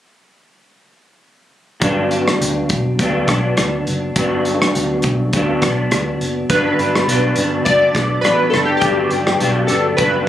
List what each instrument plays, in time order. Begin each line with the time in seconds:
1.80 fingered electric bass G1, clean electric guitar G2 F#3 B3 D4, kick, closed hi-hat
2.11 closed hi-hat
2.28 cross-stick
2.41 fingered electric bass D2, closed hi-hat
2.69 fingered electric bass B1, kick, closed hi-hat
2.99 fingered electric bass D2, clean electric guitar G2 F#3 B3 D4, kick, closed hi-hat
3.28 fingered electric bass B1, clean electric guitar F#3 B3 D4, kick, cross-stick, closed hi-hat
3.57 fingered electric bass D2, cross-stick, closed hi-hat
3.87 fingered electric bass F#1, closed hi-hat
4.16 fingered electric bass G1, clean electric guitar G2 F#3 B3 D4, kick, closed hi-hat
4.45 closed hi-hat
4.62 cross-stick
4.75 fingered electric bass D2, closed hi-hat
5.02 fingered electric bass B1, kick, closed hi-hat
5.33 fingered electric bass D2, clean electric guitar G2 F#3 B3 D4, kick, closed hi-hat
5.62 fingered electric bass B1, clean electric guitar F#3 B3 D4, kick, cross-stick, closed hi-hat
5.91 fingered electric bass D2, cross-stick, closed hi-hat
6.21 fingered electric bass F#1, closed hi-hat
6.50 fingered electric bass G1, clean electric guitar G2 F#3 B3 D4, synth keys B4, kick, closed hi-hat
6.78 fingered electric bass G1, clean electric guitar F#3 B3 D4, closed hi-hat
6.95 cross-stick
7.07 fingered electric bass B1, clean electric guitar G2 F#3 B3 D4, closed hi-hat
7.36 fingered electric bass G1, clean electric guitar F#3 B3 D4, closed hi-hat
7.65 fingered electric bass F#1, clean electric guitar G2 F#3 B3 D4, synth keys D5, kick, closed hi-hat
7.95 fingered electric bass B1, clean electric guitar F#3 B3 D4, kick, cross-stick, closed hi-hat
8.21 fingered electric bass A1, clean electric guitar G2 F#3 B3 D4, synth keys B4, cross-stick, closed hi-hat
8.50 fingered electric bass F#1, clean electric guitar B3 D4, synth keys A4, cross-stick, closed hi-hat
8.54 clean electric guitar F#3
8.65 synth keys G4
8.77 synth keys G4
8.81 fingered electric bass G1, clean electric guitar G2 F#3 B3 D4, kick, closed hi-hat
9.10 fingered electric bass G1, clean electric guitar F#3 B3 D4, closed hi-hat
9.27 cross-stick
9.40 fingered electric bass B1, clean electric guitar G2 F#3 B3 D4, closed hi-hat
9.67 fingered electric bass G1, clean electric guitar B3 D4, synth keys A4, closed hi-hat
9.71 clean electric guitar F#3
9.97 fingered electric bass F#1, clean electric guitar G2 F#3 B3 D4, synth keys B4, kick, closed hi-hat